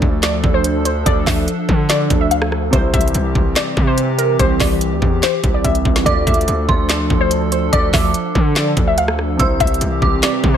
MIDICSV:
0, 0, Header, 1, 7, 480
1, 0, Start_track
1, 0, Key_signature, -1, "minor"
1, 0, Tempo, 416667
1, 1223, Time_signature, 4, 2, 24, 8
1, 12179, End_track
2, 0, Start_track
2, 0, Title_t, "Synth bell"
2, 0, Program_c, 0, 98
2, 6980, Note_on_c, 0, 86, 116
2, 7658, Note_off_c, 0, 86, 0
2, 7702, Note_on_c, 0, 84, 80
2, 8856, Note_off_c, 0, 84, 0
2, 8900, Note_on_c, 0, 86, 104
2, 9815, Note_off_c, 0, 86, 0
2, 10824, Note_on_c, 0, 88, 104
2, 11500, Note_off_c, 0, 88, 0
2, 11546, Note_on_c, 0, 86, 78
2, 12179, Note_off_c, 0, 86, 0
2, 12179, End_track
3, 0, Start_track
3, 0, Title_t, "Synth pluck"
3, 0, Program_c, 1, 84
3, 0, Note_on_c, 1, 76, 86
3, 219, Note_off_c, 1, 76, 0
3, 264, Note_on_c, 1, 74, 88
3, 602, Note_off_c, 1, 74, 0
3, 624, Note_on_c, 1, 72, 88
3, 962, Note_off_c, 1, 72, 0
3, 984, Note_on_c, 1, 72, 73
3, 1186, Note_off_c, 1, 72, 0
3, 1221, Note_on_c, 1, 74, 89
3, 1424, Note_off_c, 1, 74, 0
3, 1459, Note_on_c, 1, 76, 84
3, 2137, Note_off_c, 1, 76, 0
3, 2182, Note_on_c, 1, 74, 91
3, 2521, Note_off_c, 1, 74, 0
3, 2544, Note_on_c, 1, 76, 74
3, 2645, Note_off_c, 1, 76, 0
3, 2663, Note_on_c, 1, 77, 76
3, 2865, Note_off_c, 1, 77, 0
3, 3141, Note_on_c, 1, 72, 94
3, 3344, Note_off_c, 1, 72, 0
3, 3382, Note_on_c, 1, 76, 91
3, 4060, Note_off_c, 1, 76, 0
3, 4104, Note_on_c, 1, 74, 80
3, 4442, Note_off_c, 1, 74, 0
3, 4462, Note_on_c, 1, 72, 88
3, 4801, Note_off_c, 1, 72, 0
3, 4819, Note_on_c, 1, 70, 83
3, 5023, Note_off_c, 1, 70, 0
3, 5062, Note_on_c, 1, 72, 96
3, 5265, Note_off_c, 1, 72, 0
3, 5302, Note_on_c, 1, 74, 83
3, 5979, Note_off_c, 1, 74, 0
3, 6023, Note_on_c, 1, 72, 84
3, 6361, Note_off_c, 1, 72, 0
3, 6386, Note_on_c, 1, 74, 75
3, 6486, Note_off_c, 1, 74, 0
3, 6502, Note_on_c, 1, 76, 83
3, 6705, Note_off_c, 1, 76, 0
3, 6979, Note_on_c, 1, 74, 97
3, 7183, Note_off_c, 1, 74, 0
3, 7220, Note_on_c, 1, 76, 88
3, 7898, Note_off_c, 1, 76, 0
3, 7940, Note_on_c, 1, 74, 89
3, 8280, Note_off_c, 1, 74, 0
3, 8303, Note_on_c, 1, 72, 88
3, 8641, Note_off_c, 1, 72, 0
3, 8663, Note_on_c, 1, 72, 72
3, 8866, Note_off_c, 1, 72, 0
3, 8902, Note_on_c, 1, 74, 94
3, 9105, Note_off_c, 1, 74, 0
3, 9141, Note_on_c, 1, 76, 85
3, 9819, Note_off_c, 1, 76, 0
3, 9864, Note_on_c, 1, 74, 87
3, 10202, Note_off_c, 1, 74, 0
3, 10224, Note_on_c, 1, 76, 74
3, 10325, Note_off_c, 1, 76, 0
3, 10344, Note_on_c, 1, 77, 75
3, 10546, Note_off_c, 1, 77, 0
3, 10823, Note_on_c, 1, 72, 95
3, 11025, Note_off_c, 1, 72, 0
3, 11064, Note_on_c, 1, 76, 90
3, 11740, Note_off_c, 1, 76, 0
3, 11787, Note_on_c, 1, 74, 82
3, 12124, Note_off_c, 1, 74, 0
3, 12144, Note_on_c, 1, 72, 86
3, 12179, Note_off_c, 1, 72, 0
3, 12179, End_track
4, 0, Start_track
4, 0, Title_t, "Analog synth pad"
4, 0, Program_c, 2, 89
4, 0, Note_on_c, 2, 53, 91
4, 0, Note_on_c, 2, 62, 82
4, 0, Note_on_c, 2, 69, 96
4, 3104, Note_off_c, 2, 53, 0
4, 3104, Note_off_c, 2, 69, 0
4, 3105, Note_off_c, 2, 62, 0
4, 3142, Note_on_c, 2, 52, 86
4, 3142, Note_on_c, 2, 60, 83
4, 3142, Note_on_c, 2, 67, 99
4, 6944, Note_off_c, 2, 52, 0
4, 6944, Note_off_c, 2, 60, 0
4, 6944, Note_off_c, 2, 67, 0
4, 6984, Note_on_c, 2, 69, 101
4, 6985, Note_on_c, 2, 53, 91
4, 6985, Note_on_c, 2, 62, 80
4, 10785, Note_off_c, 2, 69, 0
4, 10786, Note_off_c, 2, 53, 0
4, 10786, Note_off_c, 2, 62, 0
4, 10821, Note_on_c, 2, 52, 91
4, 10822, Note_on_c, 2, 60, 81
4, 10822, Note_on_c, 2, 67, 99
4, 12179, Note_off_c, 2, 52, 0
4, 12179, Note_off_c, 2, 60, 0
4, 12179, Note_off_c, 2, 67, 0
4, 12179, End_track
5, 0, Start_track
5, 0, Title_t, "Grand piano"
5, 0, Program_c, 3, 0
5, 0, Control_c, 3, 64, 127
5, 0, Note_on_c, 3, 50, 71
5, 0, Note_on_c, 3, 57, 65
5, 0, Note_on_c, 3, 65, 66
5, 0, Note_on_c, 3, 74, 79
5, 3082, Note_off_c, 3, 50, 0
5, 3092, Note_off_c, 3, 57, 0
5, 3102, Note_off_c, 3, 65, 0
5, 3112, Note_off_c, 3, 74, 0
5, 3118, Note_on_c, 3, 48, 75
5, 3138, Note_on_c, 3, 55, 65
5, 3157, Note_on_c, 3, 64, 69
5, 3159, Control_c, 3, 64, 0
5, 3177, Note_on_c, 3, 72, 74
5, 3378, Control_c, 3, 64, 127
5, 6925, Note_off_c, 3, 48, 0
5, 6934, Note_off_c, 3, 55, 0
5, 6944, Note_off_c, 3, 64, 0
5, 6953, Note_on_c, 3, 50, 69
5, 6954, Note_off_c, 3, 72, 0
5, 6972, Note_on_c, 3, 57, 64
5, 6991, Note_on_c, 3, 65, 64
5, 7000, Control_c, 3, 64, 0
5, 7011, Note_on_c, 3, 74, 80
5, 7206, Control_c, 3, 64, 127
5, 10762, Note_off_c, 3, 50, 0
5, 10772, Note_off_c, 3, 57, 0
5, 10781, Note_off_c, 3, 65, 0
5, 10791, Note_off_c, 3, 74, 0
5, 10799, Note_on_c, 3, 48, 74
5, 10818, Note_on_c, 3, 55, 65
5, 10837, Note_on_c, 3, 64, 67
5, 10839, Control_c, 3, 64, 0
5, 10856, Note_on_c, 3, 72, 72
5, 11012, Control_c, 3, 64, 127
5, 12179, Note_off_c, 3, 48, 0
5, 12179, Note_off_c, 3, 55, 0
5, 12179, Note_off_c, 3, 64, 0
5, 12179, Note_off_c, 3, 72, 0
5, 12179, End_track
6, 0, Start_track
6, 0, Title_t, "808-style bass"
6, 0, Program_c, 4, 38
6, 23, Note_on_c, 4, 38, 105
6, 484, Note_off_c, 4, 38, 0
6, 503, Note_on_c, 4, 38, 109
6, 1194, Note_off_c, 4, 38, 0
6, 1223, Note_on_c, 4, 38, 116
6, 1453, Note_off_c, 4, 38, 0
6, 1462, Note_on_c, 4, 38, 109
6, 1693, Note_off_c, 4, 38, 0
6, 1944, Note_on_c, 4, 50, 108
6, 2404, Note_off_c, 4, 50, 0
6, 2423, Note_on_c, 4, 38, 106
6, 3114, Note_off_c, 4, 38, 0
6, 3144, Note_on_c, 4, 36, 115
6, 3374, Note_off_c, 4, 36, 0
6, 3383, Note_on_c, 4, 36, 109
6, 3613, Note_off_c, 4, 36, 0
6, 3624, Note_on_c, 4, 36, 109
6, 3854, Note_off_c, 4, 36, 0
6, 3863, Note_on_c, 4, 36, 103
6, 4093, Note_off_c, 4, 36, 0
6, 4343, Note_on_c, 4, 48, 109
6, 5034, Note_off_c, 4, 48, 0
6, 5062, Note_on_c, 4, 36, 118
6, 5293, Note_off_c, 4, 36, 0
6, 5302, Note_on_c, 4, 36, 115
6, 5664, Note_on_c, 4, 38, 102
6, 5682, Note_off_c, 4, 36, 0
6, 5778, Note_off_c, 4, 38, 0
6, 5783, Note_on_c, 4, 40, 108
6, 6013, Note_off_c, 4, 40, 0
6, 6262, Note_on_c, 4, 36, 105
6, 6493, Note_off_c, 4, 36, 0
6, 6502, Note_on_c, 4, 36, 109
6, 6733, Note_off_c, 4, 36, 0
6, 6743, Note_on_c, 4, 36, 102
6, 6974, Note_off_c, 4, 36, 0
6, 6984, Note_on_c, 4, 38, 115
6, 7214, Note_off_c, 4, 38, 0
6, 7223, Note_on_c, 4, 38, 107
6, 7453, Note_off_c, 4, 38, 0
6, 7462, Note_on_c, 4, 38, 106
6, 7693, Note_off_c, 4, 38, 0
6, 7703, Note_on_c, 4, 38, 107
6, 8164, Note_off_c, 4, 38, 0
6, 8182, Note_on_c, 4, 38, 107
6, 8874, Note_off_c, 4, 38, 0
6, 8902, Note_on_c, 4, 38, 115
6, 9133, Note_off_c, 4, 38, 0
6, 9142, Note_on_c, 4, 38, 106
6, 9373, Note_off_c, 4, 38, 0
6, 9622, Note_on_c, 4, 50, 110
6, 10083, Note_off_c, 4, 50, 0
6, 10102, Note_on_c, 4, 38, 107
6, 10794, Note_off_c, 4, 38, 0
6, 10823, Note_on_c, 4, 36, 121
6, 11053, Note_off_c, 4, 36, 0
6, 11062, Note_on_c, 4, 36, 110
6, 11293, Note_off_c, 4, 36, 0
6, 11303, Note_on_c, 4, 36, 106
6, 11533, Note_off_c, 4, 36, 0
6, 11543, Note_on_c, 4, 36, 107
6, 11773, Note_off_c, 4, 36, 0
6, 12023, Note_on_c, 4, 48, 104
6, 12179, Note_off_c, 4, 48, 0
6, 12179, End_track
7, 0, Start_track
7, 0, Title_t, "Drums"
7, 23, Note_on_c, 9, 36, 97
7, 138, Note_off_c, 9, 36, 0
7, 263, Note_on_c, 9, 38, 108
7, 264, Note_on_c, 9, 39, 87
7, 264, Note_on_c, 9, 42, 90
7, 379, Note_off_c, 9, 38, 0
7, 379, Note_off_c, 9, 39, 0
7, 379, Note_off_c, 9, 42, 0
7, 503, Note_on_c, 9, 36, 101
7, 618, Note_off_c, 9, 36, 0
7, 741, Note_on_c, 9, 42, 88
7, 856, Note_off_c, 9, 42, 0
7, 983, Note_on_c, 9, 42, 84
7, 1098, Note_off_c, 9, 42, 0
7, 1223, Note_on_c, 9, 36, 106
7, 1223, Note_on_c, 9, 42, 76
7, 1338, Note_off_c, 9, 36, 0
7, 1339, Note_off_c, 9, 42, 0
7, 1463, Note_on_c, 9, 36, 98
7, 1463, Note_on_c, 9, 46, 75
7, 1464, Note_on_c, 9, 38, 98
7, 1465, Note_on_c, 9, 39, 77
7, 1578, Note_off_c, 9, 36, 0
7, 1579, Note_off_c, 9, 38, 0
7, 1579, Note_off_c, 9, 46, 0
7, 1580, Note_off_c, 9, 39, 0
7, 1703, Note_on_c, 9, 42, 80
7, 1818, Note_off_c, 9, 42, 0
7, 1944, Note_on_c, 9, 36, 96
7, 2059, Note_off_c, 9, 36, 0
7, 2184, Note_on_c, 9, 38, 106
7, 2185, Note_on_c, 9, 39, 84
7, 2185, Note_on_c, 9, 42, 89
7, 2299, Note_off_c, 9, 38, 0
7, 2300, Note_off_c, 9, 39, 0
7, 2300, Note_off_c, 9, 42, 0
7, 2423, Note_on_c, 9, 36, 104
7, 2423, Note_on_c, 9, 42, 65
7, 2538, Note_off_c, 9, 42, 0
7, 2539, Note_off_c, 9, 36, 0
7, 2662, Note_on_c, 9, 42, 83
7, 2777, Note_off_c, 9, 42, 0
7, 2784, Note_on_c, 9, 37, 106
7, 2899, Note_off_c, 9, 37, 0
7, 2905, Note_on_c, 9, 37, 74
7, 3020, Note_off_c, 9, 37, 0
7, 3143, Note_on_c, 9, 36, 111
7, 3144, Note_on_c, 9, 42, 76
7, 3259, Note_off_c, 9, 36, 0
7, 3259, Note_off_c, 9, 42, 0
7, 3383, Note_on_c, 9, 36, 94
7, 3384, Note_on_c, 9, 42, 60
7, 3464, Note_off_c, 9, 42, 0
7, 3464, Note_on_c, 9, 42, 58
7, 3498, Note_off_c, 9, 36, 0
7, 3544, Note_off_c, 9, 42, 0
7, 3544, Note_on_c, 9, 42, 62
7, 3622, Note_off_c, 9, 42, 0
7, 3622, Note_on_c, 9, 42, 77
7, 3737, Note_off_c, 9, 42, 0
7, 3863, Note_on_c, 9, 36, 96
7, 3978, Note_off_c, 9, 36, 0
7, 4103, Note_on_c, 9, 38, 105
7, 4103, Note_on_c, 9, 39, 82
7, 4103, Note_on_c, 9, 42, 91
7, 4218, Note_off_c, 9, 38, 0
7, 4218, Note_off_c, 9, 42, 0
7, 4219, Note_off_c, 9, 39, 0
7, 4342, Note_on_c, 9, 36, 104
7, 4457, Note_off_c, 9, 36, 0
7, 4580, Note_on_c, 9, 42, 83
7, 4695, Note_off_c, 9, 42, 0
7, 4822, Note_on_c, 9, 42, 89
7, 4937, Note_off_c, 9, 42, 0
7, 5062, Note_on_c, 9, 36, 108
7, 5063, Note_on_c, 9, 42, 75
7, 5178, Note_off_c, 9, 36, 0
7, 5178, Note_off_c, 9, 42, 0
7, 5302, Note_on_c, 9, 36, 92
7, 5303, Note_on_c, 9, 38, 96
7, 5303, Note_on_c, 9, 46, 75
7, 5304, Note_on_c, 9, 39, 75
7, 5418, Note_off_c, 9, 36, 0
7, 5418, Note_off_c, 9, 46, 0
7, 5419, Note_off_c, 9, 38, 0
7, 5419, Note_off_c, 9, 39, 0
7, 5542, Note_on_c, 9, 42, 77
7, 5657, Note_off_c, 9, 42, 0
7, 5783, Note_on_c, 9, 36, 96
7, 5898, Note_off_c, 9, 36, 0
7, 6024, Note_on_c, 9, 38, 106
7, 6024, Note_on_c, 9, 42, 89
7, 6025, Note_on_c, 9, 39, 85
7, 6139, Note_off_c, 9, 38, 0
7, 6140, Note_off_c, 9, 39, 0
7, 6140, Note_off_c, 9, 42, 0
7, 6262, Note_on_c, 9, 42, 63
7, 6263, Note_on_c, 9, 36, 102
7, 6377, Note_off_c, 9, 42, 0
7, 6378, Note_off_c, 9, 36, 0
7, 6503, Note_on_c, 9, 36, 64
7, 6503, Note_on_c, 9, 42, 88
7, 6618, Note_off_c, 9, 36, 0
7, 6618, Note_off_c, 9, 42, 0
7, 6624, Note_on_c, 9, 42, 51
7, 6739, Note_off_c, 9, 42, 0
7, 6743, Note_on_c, 9, 36, 99
7, 6858, Note_off_c, 9, 36, 0
7, 6864, Note_on_c, 9, 38, 98
7, 6979, Note_off_c, 9, 38, 0
7, 6983, Note_on_c, 9, 36, 106
7, 6984, Note_on_c, 9, 42, 74
7, 7098, Note_off_c, 9, 36, 0
7, 7099, Note_off_c, 9, 42, 0
7, 7222, Note_on_c, 9, 36, 96
7, 7224, Note_on_c, 9, 42, 57
7, 7304, Note_off_c, 9, 42, 0
7, 7304, Note_on_c, 9, 42, 57
7, 7338, Note_off_c, 9, 36, 0
7, 7384, Note_off_c, 9, 42, 0
7, 7384, Note_on_c, 9, 42, 60
7, 7463, Note_off_c, 9, 42, 0
7, 7463, Note_on_c, 9, 42, 82
7, 7578, Note_off_c, 9, 42, 0
7, 7703, Note_on_c, 9, 36, 95
7, 7818, Note_off_c, 9, 36, 0
7, 7943, Note_on_c, 9, 38, 105
7, 7943, Note_on_c, 9, 39, 84
7, 7943, Note_on_c, 9, 42, 92
7, 8058, Note_off_c, 9, 38, 0
7, 8058, Note_off_c, 9, 39, 0
7, 8058, Note_off_c, 9, 42, 0
7, 8182, Note_on_c, 9, 36, 105
7, 8297, Note_off_c, 9, 36, 0
7, 8420, Note_on_c, 9, 42, 84
7, 8535, Note_off_c, 9, 42, 0
7, 8662, Note_on_c, 9, 42, 87
7, 8777, Note_off_c, 9, 42, 0
7, 8902, Note_on_c, 9, 36, 104
7, 8902, Note_on_c, 9, 42, 76
7, 9018, Note_off_c, 9, 36, 0
7, 9018, Note_off_c, 9, 42, 0
7, 9142, Note_on_c, 9, 36, 98
7, 9142, Note_on_c, 9, 46, 77
7, 9143, Note_on_c, 9, 38, 98
7, 9144, Note_on_c, 9, 39, 77
7, 9257, Note_off_c, 9, 36, 0
7, 9258, Note_off_c, 9, 38, 0
7, 9258, Note_off_c, 9, 46, 0
7, 9259, Note_off_c, 9, 39, 0
7, 9380, Note_on_c, 9, 42, 80
7, 9495, Note_off_c, 9, 42, 0
7, 9622, Note_on_c, 9, 36, 96
7, 9737, Note_off_c, 9, 36, 0
7, 9862, Note_on_c, 9, 38, 106
7, 9862, Note_on_c, 9, 42, 90
7, 9863, Note_on_c, 9, 39, 82
7, 9977, Note_off_c, 9, 38, 0
7, 9978, Note_off_c, 9, 39, 0
7, 9978, Note_off_c, 9, 42, 0
7, 10101, Note_on_c, 9, 42, 65
7, 10102, Note_on_c, 9, 36, 105
7, 10216, Note_off_c, 9, 42, 0
7, 10217, Note_off_c, 9, 36, 0
7, 10341, Note_on_c, 9, 42, 85
7, 10456, Note_off_c, 9, 42, 0
7, 10462, Note_on_c, 9, 37, 109
7, 10578, Note_off_c, 9, 37, 0
7, 10584, Note_on_c, 9, 37, 72
7, 10699, Note_off_c, 9, 37, 0
7, 10823, Note_on_c, 9, 36, 110
7, 10823, Note_on_c, 9, 42, 74
7, 10938, Note_off_c, 9, 36, 0
7, 10938, Note_off_c, 9, 42, 0
7, 11062, Note_on_c, 9, 36, 99
7, 11062, Note_on_c, 9, 42, 58
7, 11143, Note_off_c, 9, 42, 0
7, 11143, Note_on_c, 9, 42, 57
7, 11177, Note_off_c, 9, 36, 0
7, 11223, Note_off_c, 9, 42, 0
7, 11223, Note_on_c, 9, 42, 62
7, 11302, Note_off_c, 9, 42, 0
7, 11302, Note_on_c, 9, 42, 80
7, 11418, Note_off_c, 9, 42, 0
7, 11543, Note_on_c, 9, 36, 95
7, 11658, Note_off_c, 9, 36, 0
7, 11784, Note_on_c, 9, 38, 107
7, 11784, Note_on_c, 9, 42, 87
7, 11785, Note_on_c, 9, 39, 84
7, 11899, Note_off_c, 9, 38, 0
7, 11900, Note_off_c, 9, 39, 0
7, 11900, Note_off_c, 9, 42, 0
7, 12023, Note_on_c, 9, 36, 105
7, 12138, Note_off_c, 9, 36, 0
7, 12179, End_track
0, 0, End_of_file